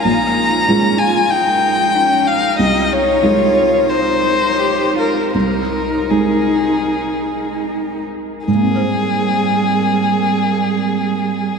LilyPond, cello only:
\new Staff \with { instrumentName = "Cello" } { \time 4/4 \key aes \major \tempo 4 = 81 ees'4 des'8 f'8 ees'4 des'8 ees'8~ | ees'4 f'4 ees'4 g'8 f'8 | ees'2.~ ees'8 r8 | g1 | }